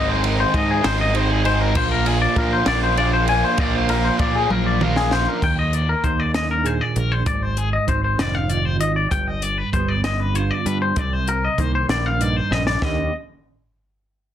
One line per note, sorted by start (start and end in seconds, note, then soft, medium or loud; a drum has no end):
0.00 0.44 G#1 loud
0.00 0.54 G#2 loud
0.00 0.52 D#3 loud
0.00 0.25 G#3 loud
0.00 0.24 C4 loud
0.00 0.22 D#4 loud
0.09 0.25 C5 medium
0.24 0.54 G#3 medium
0.24 0.54 C4 medium
0.24 0.54 D#4 medium
0.24 0.39 A#4 medium
0.24 ride medium
0.40 0.55 C5 medium
0.54 0.79 G#2 medium
0.54 1.13 D#3 medium
0.54 0.85 G#3 medium
0.54 0.83 C4 medium
0.54 0.82 D#4 medium
0.54 0.70 D#5 medium
0.54 kick medium
0.54 ride medium
0.71 0.85 G#4 medium
0.83 1.75 G#1 medium
0.83 1.14 G#3 medium
0.83 1.14 C4 medium
0.83 1.15 D#4 medium
0.83 1.00 C5 medium
0.83 snare loud
0.83 ride loud
1.01 1.16 D#5 medium
1.14 1.73 D#3 medium
1.14 1.47 G#3 medium
1.14 1.45 C4 medium
1.14 1.44 D#4 medium
1.14 1.31 C5 medium
1.14 ride medium
1.31 1.45 G#4 medium
1.45 1.76 G#3 medium
1.45 1.74 C4 medium
1.45 1.74 D#4 medium
1.45 1.61 C5 medium
1.45 ride medium
1.61 1.76 A#4 medium
1.75 2.26 A#1 loud
1.75 3.58 A#2 medium
1.75 2.36 F3 loud
1.75 2.07 A#3 loud
1.75 2.06 D4 loud
1.75 2.05 F4 loud
1.75 1.91 C5 loud
1.75 kick loud
1.75 crash loud
1.92 2.07 A#4 medium
2.06 2.37 A#3 medium
2.06 2.37 D4 medium
2.06 2.38 F4 medium
2.06 2.21 G#4 medium
2.06 ride medium
2.22 2.37 D5 medium
2.36 2.62 A#2 medium
2.36 2.96 F3 medium
2.36 2.68 A#3 medium
2.36 2.68 D4 medium
2.36 2.65 F4 medium
2.36 2.52 A#4 medium
2.36 kick medium
2.36 ride medium
2.53 2.67 C5 medium
2.66 3.42 A#1 loud
2.66 2.98 A#3 medium
2.66 2.98 D4 medium
2.66 2.98 F4 medium
2.66 2.83 D5 medium
2.66 snare loud
2.66 ride loud
2.83 2.98 C5 medium
2.97 3.58 F3 medium
2.97 3.30 A#3 medium
2.97 3.29 D4 medium
2.97 3.27 F4 medium
2.97 3.13 D5 medium
2.97 ride medium
3.13 3.28 C5 medium
3.28 3.58 A#3 medium
3.28 3.59 D4 medium
3.28 3.59 F4 medium
3.28 3.44 G#5 medium
3.28 ride medium
3.44 3.60 C5 medium
3.58 4.09 A#1 loud
3.58 4.20 A#2 loud
3.58 4.18 F3 loud
3.58 3.90 A#3 loud
3.58 3.89 D4 loud
3.58 3.87 F4 loud
3.58 3.75 D5 loud
3.58 kick loud
3.58 ride loud
3.75 3.89 C5 medium
3.89 4.19 A#3 medium
3.89 4.20 D4 medium
3.89 4.20 F4 medium
3.89 4.05 A#4 medium
3.89 ride medium
4.05 4.20 C5 medium
4.19 4.45 A#2 medium
4.19 4.79 F3 medium
4.19 4.51 A#3 medium
4.19 4.50 D4 medium
4.19 4.49 F4 medium
4.19 4.35 D5 medium
4.19 kick medium
4.19 ride medium
4.36 4.51 G#4 medium
4.50 5.26 A#1 medium
4.50 4.80 A#3 medium
4.50 4.81 D4 medium
4.50 4.82 F4 medium
4.50 4.66 A#4 medium
4.50 high tom medium
4.66 4.82 D5 medium
4.81 5.40 F3 medium
4.81 5.11 A#3 medium
4.81 5.11 D4 medium
4.81 5.10 F4 medium
4.81 4.97 A#4 medium
4.81 mid tom medium
4.96 5.12 G#4 medium
4.96 snare medium
5.11 5.41 A#3 medium
5.11 5.40 D4 medium
5.11 5.40 F4 medium
5.11 5.28 C5 medium
5.11 snare loud
5.28 5.43 A#4 medium
5.42 7.26 D#2 medium
5.42 5.93 D#2 medium
5.42 5.58 G5 medium
5.42 kick medium
5.42 crash medium
5.59 5.74 D#5 medium
5.73 5.89 D5 medium
5.73 closed hi-hat medium
5.89 6.04 A#4 medium
6.03 6.80 D#2 medium
6.03 7.86 D#3 medium
6.03 7.23 A#3 medium
6.03 6.20 C5 medium
6.03 kick medium
6.03 closed hi-hat medium
6.20 6.35 D5 medium
6.34 6.95 D4 medium
6.34 6.50 D#5 medium
6.34 snare medium
6.34 closed hi-hat medium
6.51 6.66 A#4 medium
6.63 7.25 A#2 medium
6.63 7.22 G#4 medium
6.63 6.81 C5 medium
6.63 closed hi-hat medium
6.81 6.97 D5 medium
6.96 7.21 A#1 medium
6.96 7.23 D4 medium
6.96 7.12 A#4 medium
6.96 closed hi-hat soft
7.12 7.27 C5 medium
7.26 7.77 G#1 medium
7.26 9.07 G#2 medium
7.26 7.42 D5 medium
7.26 kick loud
7.26 closed hi-hat medium
7.42 7.58 C5 medium
7.57 7.73 G#4 medium
7.57 closed hi-hat medium
7.73 7.88 D#5 medium
7.87 8.14 G#1 medium
7.87 8.48 D#3 medium
7.87 9.07 C4 medium
7.87 8.03 C5 medium
7.87 kick medium
7.87 closed hi-hat medium
8.04 8.19 C5 medium
8.18 8.80 F1 medium
8.18 8.80 D#4 medium
8.18 8.35 D5 medium
8.18 snare loud
8.18 closed hi-hat medium
8.35 8.50 F5 medium
8.49 9.07 D#3 medium
8.49 9.07 F4 medium
8.49 8.65 D5 medium
8.49 closed hi-hat medium
8.65 8.80 C5 medium
8.80 9.05 G#1 medium
8.80 9.08 D#4 soft
8.80 8.96 D#5 medium
8.80 closed hi-hat medium
8.96 9.11 D5 medium
9.11 9.62 G1 medium
9.11 10.93 G2 medium
9.11 9.27 G5 medium
9.11 kick medium
9.11 closed hi-hat medium
9.27 9.42 D#5 medium
9.42 9.58 D5 medium
9.42 closed hi-hat medium
9.58 9.73 B4 medium
9.73 10.50 G1 medium
9.73 11.58 G3 medium
9.73 10.93 B3 medium
9.73 9.88 C5 medium
9.73 kick medium
9.73 closed hi-hat medium
9.88 10.04 D5 medium
10.04 10.66 D4 medium
10.04 10.20 D#5 medium
10.04 snare loud
10.04 closed hi-hat medium
10.20 10.35 B4 medium
10.34 10.92 D3 medium
10.34 10.92 F4 medium
10.34 10.51 C5 medium
10.34 closed hi-hat medium
10.51 10.66 D5 medium
10.66 10.91 G2 medium
10.66 10.99 D4 medium
10.66 10.81 B4 medium
10.66 closed hi-hat medium
10.82 10.98 C5 medium
10.96 11.47 C2 medium
10.96 11.58 C3 medium
10.96 11.13 D5 medium
10.96 kick loud
10.96 closed hi-hat medium
11.13 11.28 C5 medium
11.27 11.43 A#4 medium
11.27 closed hi-hat medium
11.44 11.60 D#5 medium
11.58 11.84 C2 medium
11.58 12.81 D#3 medium
11.58 12.78 A#3 medium
11.58 11.74 C5 medium
11.58 kick medium
11.58 closed hi-hat medium
11.75 11.90 C5 medium
11.88 12.40 A#1 medium
11.88 12.50 D4 medium
11.88 12.06 D5 medium
11.88 snare loud
11.88 closed hi-hat medium
12.06 12.22 F5 medium
12.19 12.78 G2 medium
12.19 12.84 D#4 medium
12.19 12.37 D5 medium
12.19 closed hi-hat medium
12.37 12.52 C5 medium
12.51 12.76 A#1 medium
12.51 12.78 D4 soft
12.51 12.66 D#5 medium
12.51 snare soft
12.67 12.83 D5 medium
12.67 snare medium
12.81 13.09 D#2 medium
12.81 13.10 D#2 medium
12.81 13.10 D#3 medium
12.81 13.10 A#3 medium
12.81 13.11 D4 medium
12.81 13.11 G4 medium
12.81 13.13 D#5 medium
12.81 kick medium
12.81 snare medium